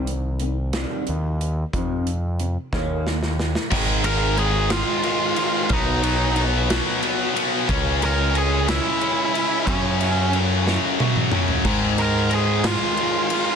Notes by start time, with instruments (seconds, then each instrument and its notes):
Already playing: picked electric bass C2
0.07 clean electric guitar C3 D#3, closed hi-hat
0.40 clean electric guitar C3 D#3, closed hi-hat
0.73 clean electric guitar C3 D#3 G3, snare, closed hi-hat
1.07 picked electric bass D#2, clean electric guitar C3 D#3, closed hi-hat
1.41 closed hi-hat
1.73 clean electric guitar F2 C3 F3, picked electric bass F2, kick, closed hi-hat
2.07 clean electric guitar F2 C3, closed hi-hat
2.40 clean electric guitar F2 C3, closed hi-hat
2.73 picked electric bass D#2, clean electric guitar D#3 A#3 C#4, kick, snare
3.06 clean electric guitar D#3 A#3, snare
3.23 snare
3.39 snare
3.55 snare
3.71 picked electric bass G#1, distorted electric guitar G#2 D#3 G#3, kick, crash
4.04 distorted electric guitar G#2 D#3 G#3, lead electric guitar A#4 A#5, ride
4.37 distorted electric guitar G#2 D#3 G#3, lead electric guitar G#4 G#5, ride
4.70 distorted electric guitar G#2 D#3 G#3, lead electric guitar F4 F5, snare, ride
5.03 distorted electric guitar G#2 D#3 G#3, ride
5.36 distorted electric guitar G#2 D#3 G#3, ride
5.69 picked electric bass B1, distorted electric guitar B2 F#3 B3, lead electric guitar D#4 D#5, kick, ride
6.02 distorted electric guitar B2 F#3 B3, ride
6.36 distorted electric guitar B2 F#3 B3, ride
6.70 distorted electric guitar B2 F#3 B3, snare, ride
7.01 distorted electric guitar B2 F#3 B3, ride
7.34 distorted electric guitar B2 F#3 B3, ride
7.69 picked electric bass C#2, distorted electric guitar C#3 G#3 C#4, kick, ride
8.02 distorted electric guitar C#3 G#3 C#4, lead electric guitar A#4 A#5, ride
8.34 distorted electric guitar C#3 G#3 C#4, lead electric guitar G#4 G#5, ride
8.67 distorted electric guitar C#3 G#3 C#4, lead electric guitar E4 E5, snare, ride
9.01 distorted electric guitar C#3 G#3 C#4, ride
9.34 distorted electric guitar C#3 G#3 C#4, ride
9.66 distorted electric guitar F#2 C#3 F#3, picked electric bass F#2, lead electric guitar C#4 C#5, kick, ride
10.00 distorted electric guitar F#2 C#3 F#3, ride
10.33 distorted electric guitar F#2 C#3 F#3, ride
10.67 distorted electric guitar F#2 C#3 F#3, snare
11.00 distorted electric guitar F#2 C#3 F#3, high tom
11.16 mid tom
11.32 distorted electric guitar F#2 C#3 F#3, mid tom
11.48 floor tom
11.65 picked electric bass G#2, distorted electric guitar G#2 D#3 G#3, kick, crash
11.98 distorted electric guitar G#2 D#3 G#3, lead electric guitar A#4 A#5, ride
12.31 distorted electric guitar G#2 D#3 G#3, lead electric guitar G#4, ride
12.35 lead electric guitar G#5
12.64 distorted electric guitar G#2 D#3 G#3, lead electric guitar F4 F5, snare, ride
12.97 distorted electric guitar G#2 D#3 G#3, ride
13.30 distorted electric guitar G#2 D#3 G#3, ride